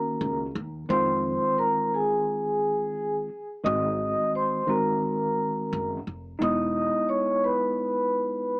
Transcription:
0.00 0.45 D#3 loud
0.00 0.45 A#3 medium
0.00 0.46 C#4 medium
0.00 0.46 F#4 loud
0.00 0.36 A#4 medium
0.00 0.36 A#5 medium
0.21 0.50 C#2 loud
0.55 0.85 D#2 loud
0.89 1.36 F2 loud
0.89 3.28 D#3 loud
0.89 3.28 G#3 loud
0.89 3.29 C4 loud
0.89 3.29 F4 loud
0.89 1.54 C5 loud
0.89 1.54 C6 medium
1.58 1.89 A#4 medium
1.58 1.90 A#5 medium
1.94 3.13 G#4 medium
1.94 3.13 G#5 medium
3.64 4.12 G#1 loud
3.64 4.61 D#3 loud
3.64 4.61 G#3 loud
3.64 4.62 C4 medium
3.64 4.62 F#4 loud
3.64 4.30 D#5 loud
3.64 4.30 D#6 medium
4.35 4.66 C5 medium
4.35 4.66 C6 medium
4.67 5.96 D#3 loud
4.67 5.97 G#3 medium
4.67 5.97 C4 medium
4.67 5.98 F#4 loud
4.67 5.88 A#4 medium
4.67 5.88 A#5 medium
5.73 6.02 F#1 loud
6.07 6.36 F1 medium
6.39 6.88 E1 loud
6.39 8.60 G#3 medium
6.39 8.60 B3 medium
6.39 8.60 D#4 loud
6.39 8.60 E4 loud
6.39 7.07 D#5 loud
6.43 7.07 D#6 medium
7.09 7.40 C#5 medium
7.09 7.41 C#6 medium
7.44 8.60 B4 medium
7.44 8.60 B5 medium

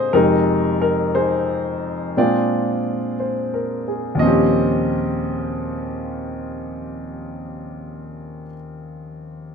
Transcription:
0.00 0.12 A#2 soft
0.00 0.14 D3 soft
0.00 0.12 G#3 soft
0.00 0.13 C4 soft
0.00 0.15 F4 medium
0.00 0.14 G4 medium
0.00 0.15 G#4 medium
0.00 0.15 C5 medium
0.00 0.15 D#5 medium
0.00 0.14 G5 soft
0.13 2.16 F2 medium
0.13 2.16 C3 medium
0.13 2.16 G#3 medium
0.13 1.14 D#4 medium
0.13 0.80 A#4 medium
0.82 0.89 A#4 medium
1.15 2.13 D#4 soft
1.15 2.13 G#4 soft
1.15 2.12 C5 medium
2.17 4.16 A#2 soft
2.17 4.20 G#3 soft
2.17 4.20 C4 soft
2.17 4.20 D4 soft
2.17 4.17 F4 soft
2.17 3.86 G#4 soft
2.17 3.15 D5 medium
2.17 4.20 G5 soft
3.20 3.83 C5 soft
3.54 4.06 A#4 soft
3.88 4.40 G#4 soft
4.15 8.42 D#2 medium
4.15 8.45 A#2 medium
4.19 8.47 F3 medium
4.19 8.49 C4 medium
4.19 8.42 D#5 medium
4.24 8.51 C#4 medium
4.24 8.54 G4 medium

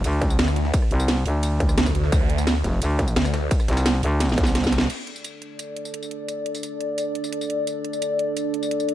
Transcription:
0.04 0.38 D2 loud
0.04 closed hi-hat medium
0.04 ride medium
0.04 tambourine medium
0.13 closed hi-hat soft
0.22 kick loud
0.22 snare soft
0.22 closed hi-hat medium
0.30 tambourine medium
0.39 0.72 D2 loud
0.39 snare loud
0.39 closed hi-hat medium
0.39 ride medium
0.48 cross-stick medium
0.48 snare soft
0.48 tambourine soft
0.56 snare medium
0.56 closed hi-hat medium
0.65 snare medium
0.74 kick loud
0.74 closed hi-hat medium
0.74 ride medium
0.74 tambourine medium
0.82 cross-stick soft
0.91 1.24 C2 loud
0.91 closed hi-hat medium
1.00 cross-stick soft
1.00 closed hi-hat soft
1.00 tambourine medium
1.08 snare loud
1.08 closed hi-hat medium
1.08 ride medium
1.08 tambourine medium
1.17 snare soft
1.26 1.76 D2 loud
1.26 closed hi-hat medium
1.26 open hi-hat medium
1.43 closed hi-hat medium
1.43 closed hi-hat loud
1.43 ride medium
1.43 tambourine medium
1.60 kick loud
1.60 closed hi-hat medium
1.69 cross-stick soft
1.69 tambourine medium
1.78 2.11 D2 loud
1.78 snare loud
1.78 closed hi-hat medium
1.78 ride medium
1.86 kick medium
1.86 snare medium
1.86 tambourine medium
1.95 closed hi-hat medium
2.04 snare medium
2.12 2.63 D2 loud
2.12 kick loud
2.12 closed hi-hat medium
2.12 ride medium
2.12 tambourine medium
2.21 cross-stick soft
2.30 closed hi-hat medium
2.38 cross-stick soft
2.38 snare soft
2.38 tambourine medium
2.47 snare loud
2.47 closed hi-hat medium
2.47 closed hi-hat loud
2.47 ride medium
2.47 tambourine medium
2.64 2.80 F1 loud
2.64 kick medium
2.64 snare medium
2.64 closed hi-hat medium
2.73 snare soft
2.82 3.15 D2 loud
2.82 closed hi-hat medium
2.82 closed hi-hat loud
2.82 ride medium
2.82 tambourine medium
2.90 closed hi-hat soft
2.99 kick loud
2.99 snare medium
2.99 closed hi-hat medium
3.08 tambourine medium
3.16 3.50 D2 loud
3.16 snare loud
3.16 closed hi-hat medium
3.16 ride medium
3.25 cross-stick medium
3.25 snare soft
3.25 tambourine medium
3.34 snare loud
3.34 closed hi-hat medium
3.51 kick loud
3.51 closed hi-hat medium
3.51 closed hi-hat loud
3.51 ride medium
3.51 tambourine medium
3.60 cross-stick soft
3.60 tambourine soft
3.68 4.02 C2 loud
3.68 snare medium
3.68 closed hi-hat medium
3.73 snare medium
3.73 closed hi-hat medium
3.77 cross-stick soft
3.77 snare loud
3.77 closed hi-hat medium
3.77 tambourine medium
3.86 snare loud
3.86 closed hi-hat medium
3.86 closed hi-hat loud
3.86 ride medium
3.86 tambourine medium
3.94 snare soft
4.03 4.36 D2 loud
4.03 closed hi-hat medium
4.03 open hi-hat medium
4.20 snare medium
4.20 closed hi-hat medium
4.20 closed hi-hat loud
4.20 ride medium
4.20 tambourine medium
4.29 snare medium
4.29 tambourine soft
4.38 4.88 C2 loud
4.38 kick loud
4.38 closed hi-hat medium
4.44 snare medium
4.44 tambourine medium
4.55 snare loud
4.55 snare medium
4.55 closed hi-hat medium
4.55 closed hi-hat loud
4.55 ride medium
4.64 kick medium
4.64 snare medium
4.64 tambourine medium
4.67 snare loud
4.72 snare loud
4.72 closed hi-hat medium
4.72 tambourine soft
4.78 snare loud
4.81 snare loud
4.81 closed hi-hat medium
4.81 tambourine soft
4.90 8.94 D4 medium
4.90 8.94 A4 medium
4.90 8.94 D5 medium
4.90 closed hi-hat medium
4.90 crash medium
4.90 tambourine soft
5.07 closed hi-hat medium
5.16 tambourine medium
5.24 closed hi-hat medium
5.24 tambourine soft
5.42 closed hi-hat medium
5.59 closed hi-hat loud
5.59 tambourine soft
5.76 closed hi-hat medium
5.85 tambourine medium
5.94 closed hi-hat medium
6.03 tambourine soft
6.11 closed hi-hat medium
6.29 closed hi-hat medium
6.29 tambourine soft
6.46 closed hi-hat medium
6.55 tambourine medium
6.63 closed hi-hat medium
6.63 tambourine soft
6.81 closed hi-hat medium
6.98 closed hi-hat medium
6.98 tambourine soft
7.15 closed hi-hat medium
7.24 tambourine medium
7.33 closed hi-hat medium
7.41 tambourine soft
7.50 closed hi-hat medium
7.67 closed hi-hat medium
7.67 tambourine soft
7.85 closed hi-hat medium
7.93 tambourine medium
8.02 closed hi-hat medium
8.02 tambourine soft
8.19 closed hi-hat medium
8.37 closed hi-hat medium
8.37 tambourine soft
8.54 closed hi-hat medium
8.63 tambourine medium
8.71 closed hi-hat medium
8.80 tambourine soft
8.89 closed hi-hat medium

